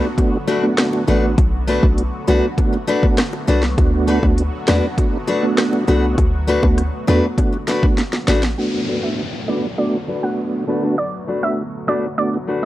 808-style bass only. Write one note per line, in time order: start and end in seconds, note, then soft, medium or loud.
1.08 1.35 A1 medium
1.38 1.79 B1 loud
1.83 2.10 B1 medium
2.28 2.42 C2 medium
3.48 3.75 C2 medium
3.78 4.19 D2 loud
4.23 4.50 D2 loud
4.68 4.82 E2 loud
5.88 6.15 C2 loud
6.18 6.59 D2 loud
6.63 6.90 D2 loud
7.08 7.22 E2 medium
8.28 8.55 A1 loud